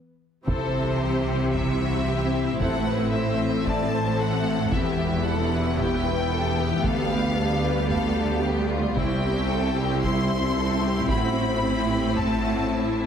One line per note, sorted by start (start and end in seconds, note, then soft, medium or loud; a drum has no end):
0.47 2.56 C2 medium
0.47 2.56 C3 medium
0.47 6.81 E3 medium
0.47 4.68 C4 soft
0.47 4.69 C4 medium
0.47 4.68 E4 soft
0.47 2.56 G4 medium
0.47 0.97 A4 soft
0.47 1.50 C5 medium
0.47 6.81 E5 medium
0.47 taiko medium
1.02 1.54 G4 soft
1.54 1.81 E4 soft
1.54 2.60 E5 medium
1.54 taiko medium
1.82 2.07 F#4 medium
2.08 2.60 G4 soft
2.59 4.68 A1 medium
2.59 4.69 A2 medium
2.59 4.72 A4 medium
2.59 2.87 A4 soft
2.59 3.12 F#5 medium
2.59 taiko medium
2.87 3.13 B4 medium
3.12 3.67 C5 medium
3.12 3.65 E5 medium
3.66 3.93 D5 soft
3.66 4.20 A5 medium
3.66 taiko medium
3.93 4.19 C5 medium
4.20 4.72 A4 soft
4.20 4.73 F#5 medium
4.72 6.81 E1 medium
4.72 6.81 E2 medium
4.72 8.97 B3 medium
4.72 8.93 B3 medium
4.72 6.81 E4 soft
4.72 11.09 G4 medium
4.72 5.24 G4 medium
4.72 5.25 E5 medium
4.72 taiko medium
5.24 5.51 A4 medium
5.24 5.78 F#5 medium
5.52 5.79 B4 soft
5.78 6.05 G4 medium
5.78 6.85 G5 medium
5.78 taiko medium
6.05 6.32 B4 medium
6.31 6.58 A4 medium
6.57 6.84 G4 medium
6.83 8.93 D2 medium
6.83 11.09 G3 medium
6.83 8.93 G4 medium
6.83 7.10 A4 medium
6.83 8.97 D5 medium
6.83 7.88 F5 medium
6.83 taiko medium
7.11 7.38 G4 medium
7.37 7.64 A4 medium
7.64 7.90 B4 medium
7.89 8.42 A4 medium
7.89 8.42 F5 medium
7.89 taiko medium
8.43 8.70 G4 medium
8.69 8.96 F4 medium
8.95 11.05 C2 medium
8.95 11.06 C2 medium
8.95 13.06 C4 medium
8.95 9.23 E4 medium
8.95 13.06 E4 medium
8.95 13.06 E5 medium
8.95 9.99 G5 medium
8.95 taiko medium
9.23 9.50 G4 medium
9.50 9.76 A4 medium
9.78 10.04 G4 medium
10.03 10.57 E4 medium
10.03 11.09 C6 loud
10.03 taiko medium
10.57 10.83 A4 medium
10.83 11.10 G4 medium
11.09 13.06 A1 medium
11.09 13.06 A2 medium
11.09 13.06 A3 medium
11.09 13.06 E4 medium
11.09 11.63 F#4 medium
11.09 12.14 B5 loud
11.09 taiko medium
11.64 11.89 E4 medium
11.90 12.16 G4 medium
12.16 12.43 A4 medium
12.16 12.96 A5 medium
12.16 taiko medium
12.44 12.69 F#4 medium
12.70 13.06 E4 medium